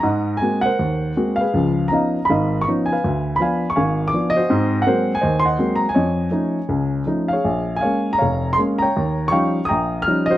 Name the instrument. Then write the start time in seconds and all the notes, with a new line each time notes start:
upright piano
0.00 G#2 D#5 F#5 A#5
0.37 G#5
0.42 G#3 A#3 C4 F#4
0.61 F#5
0.66 A#4 C5
0.79 D#2
1.17 G#3 A#3 C4 F#4
1.36 F5
1.41 G#4 B4
1.54 C#2 F3
1.88 F3 B3 C#4 A#5
1.92 D#4 D#5 F5
2.25 B5
2.30 G#1 G#2 D#5 F5
2.61 C#6
2.68 F3 B3 C#4 D#4
2.86 G#5
2.92 B4 F5
3.04 D2
3.36 F3 B5
3.40 B3 D4 F5 G#5
3.70 C#6
3.76 G#1 F5 G#5
4.08 D6
4.14 F3 B3 D4
4.30 D#5
4.36 F#4 C5
4.50 G#2 C4
4.82 F#5
4.86 F#3 G#3 A#3 C4 A#4 C5
5.15 G#5
5.21 D#2 C5 D#5
5.40 C6
5.45 D#5 F#5
5.59 F#3 G#3 A#3 C4
5.75 A#5
5.89 G#5
5.94 F2 C#5 D#5
6.31 F3 A3 C#4 D#4
6.69 C#2
7.06 F3 A3 C#4 D#4
7.28 F5
7.33 G#4 C#5
7.44 A#1
7.76 G#5
7.81 G#3 A#3 C#4 C#5 F5
8.13 A#5
8.18 F1 C#5 F5
8.53 C6
8.58 G#3 A#3 C#4
8.78 G5 A#5
8.83 C#5
8.97 D#2
9.28 F3 F5 G5 C#6
9.32 G3 C#4 D#4
9.65 G5 A#5 D#6
9.70 A#1
10.02 F6
10.07 F3 G3 C#4 D#4
10.26 D#5
10.30 F#4 C5